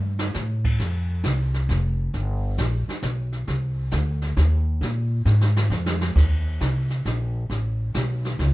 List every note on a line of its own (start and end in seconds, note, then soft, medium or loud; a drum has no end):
0.00 0.33 G2 medium
0.19 snare medium
0.34 0.78 A2 medium
0.34 snare medium
0.64 kick medium
0.64 crash medium
0.79 1.23 F2 medium
0.79 brush sweep soft
0.79 kick soft
0.79 snare soft
1.24 1.68 C2 medium
1.24 kick soft
1.24 snare medium
1.24 hi-hat pedal medium
1.54 snare soft
1.69 2.12 F1 medium
1.69 kick soft
1.69 snare soft
2.14 2.57 G1 medium
2.14 brush sweep soft
2.14 kick soft
2.14 snare soft
2.58 2.86 A#1 medium
2.58 kick soft
2.58 snare medium
2.58 hi-hat pedal soft
2.88 muted upright bass stroke soft
2.88 snare soft
3.03 3.46 B1 medium
3.03 kick soft
3.03 snare medium
3.03 hi-hat pedal medium
3.32 snare soft
3.47 3.91 C2 medium
3.47 brush sweep soft
3.47 kick soft
3.47 snare soft
3.91 4.36 D2 medium
3.91 kick soft
3.91 snare medium
3.91 hi-hat pedal medium
4.22 snare soft
4.37 4.80 D#2 loud
4.37 kick soft
4.37 snare soft
4.81 5.25 A#2 medium
4.81 brush sweep soft
4.81 kick soft
4.81 snare soft
5.25 5.69 G#2 medium
5.25 snare soft
5.25 hi-hat pedal medium
5.41 snare medium
5.57 snare medium
5.70 6.14 F2 medium
5.70 snare medium
5.86 snare medium
6.01 snare medium
6.16 6.59 D#2 medium
6.16 brush sweep soft
6.16 kick medium
6.16 snare soft
6.16 crash medium
6.61 7.04 C2 medium
6.61 kick soft
6.61 snare medium
6.61 hi-hat pedal medium
6.90 snare soft
7.05 7.48 A#1 medium
7.05 kick soft
7.05 snare soft
7.50 7.93 A1 medium
7.50 brush sweep medium
7.50 kick soft
7.50 snare soft
7.94 8.38 B1 loud
7.94 kick soft
7.94 snare medium
7.94 hi-hat pedal soft
8.25 snare soft
8.39 8.54 C#2 medium
8.39 kick soft
8.39 snare soft